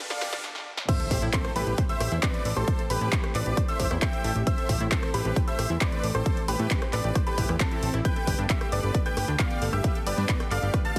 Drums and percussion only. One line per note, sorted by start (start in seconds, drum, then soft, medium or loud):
0.10 snare medium
0.10 closed hi-hat soft
0.21 kick medium
0.21 snare loud
0.21 open hi-hat loud
0.33 snare medium
0.44 snare medium
0.55 snare medium
0.77 snare medium
0.89 kick loud
0.89 closed hi-hat loud
0.89 crash loud
1.00 closed hi-hat soft
1.11 kick medium
1.11 open hi-hat loud
1.22 closed hi-hat soft
1.33 kick loud
1.33 clap loud
1.33 closed hi-hat loud
1.45 cross-stick medium
1.45 closed hi-hat soft
1.56 open hi-hat loud
1.67 closed hi-hat soft
1.78 kick loud
1.78 closed hi-hat medium
1.89 closed hi-hat soft
2.00 cross-stick medium
2.00 open hi-hat loud
2.12 closed hi-hat soft
2.23 kick loud
2.23 clap loud
2.23 closed hi-hat loud
2.34 closed hi-hat soft
2.45 open hi-hat loud
2.56 cross-stick medium
2.56 closed hi-hat soft
2.68 kick loud
2.68 closed hi-hat medium
2.79 closed hi-hat soft
2.90 open hi-hat loud
3.01 closed hi-hat soft
3.12 kick loud
3.12 clap loud
3.12 closed hi-hat medium
3.24 cross-stick medium
3.24 closed hi-hat soft
3.35 clap soft
3.35 open hi-hat loud
3.46 closed hi-hat soft
3.57 kick loud
3.57 cross-stick medium
3.57 closed hi-hat medium
3.68 closed hi-hat soft
3.80 kick medium
3.80 open hi-hat loud
3.91 cross-stick medium
3.91 closed hi-hat soft
4.02 kick loud
4.02 clap loud
4.02 closed hi-hat medium
4.13 closed hi-hat soft
4.24 open hi-hat loud
4.36 closed hi-hat soft
4.47 kick loud
4.47 closed hi-hat medium
4.58 closed hi-hat soft
4.69 kick medium
4.69 open hi-hat loud
4.80 closed hi-hat soft
4.92 kick loud
4.92 clap loud
4.92 closed hi-hat medium
5.03 cross-stick medium
5.03 closed hi-hat soft
5.14 open hi-hat loud
5.25 closed hi-hat soft
5.36 kick loud
5.36 closed hi-hat medium
5.48 closed hi-hat soft
5.59 cross-stick medium
5.59 open hi-hat loud
5.70 closed hi-hat soft
5.81 kick loud
5.81 clap loud
5.81 closed hi-hat medium
5.92 closed hi-hat soft
6.04 open hi-hat loud
6.15 cross-stick medium
6.15 closed hi-hat soft
6.26 kick loud
6.26 closed hi-hat medium
6.37 closed hi-hat soft
6.48 open hi-hat loud
6.59 closed hi-hat soft
6.71 kick loud
6.71 clap loud
6.71 closed hi-hat medium
6.82 cross-stick medium
6.82 closed hi-hat soft
6.93 clap soft
6.93 open hi-hat loud
7.04 closed hi-hat soft
7.15 kick loud
7.15 cross-stick medium
7.15 closed hi-hat medium
7.27 closed hi-hat soft
7.38 kick medium
7.38 open hi-hat loud
7.49 cross-stick medium
7.49 closed hi-hat soft
7.60 kick loud
7.60 clap loud
7.60 closed hi-hat medium
7.71 closed hi-hat soft
7.83 open hi-hat loud
7.94 cross-stick medium
7.94 closed hi-hat soft
8.05 kick loud
8.05 closed hi-hat medium
8.16 closed hi-hat soft
8.27 kick medium
8.27 open hi-hat loud
8.50 kick loud
8.50 clap loud
8.50 closed hi-hat medium
8.61 cross-stick medium
8.61 closed hi-hat soft
8.72 open hi-hat loud
8.83 closed hi-hat soft
8.95 kick loud
8.95 closed hi-hat medium
9.06 closed hi-hat soft
9.17 cross-stick medium
9.17 open hi-hat loud
9.28 closed hi-hat soft
9.39 kick loud
9.39 clap loud
9.39 closed hi-hat medium
9.51 closed hi-hat soft
9.62 open hi-hat loud
9.73 cross-stick medium
9.84 kick loud
9.84 closed hi-hat medium
9.95 closed hi-hat soft
10.07 open hi-hat loud
10.18 closed hi-hat soft
10.29 kick loud
10.29 clap loud
10.29 closed hi-hat medium
10.40 cross-stick medium
10.40 closed hi-hat soft
10.51 clap soft
10.51 open hi-hat loud
10.63 closed hi-hat soft
10.74 kick loud
10.74 cross-stick medium
10.74 closed hi-hat medium
10.85 closed hi-hat soft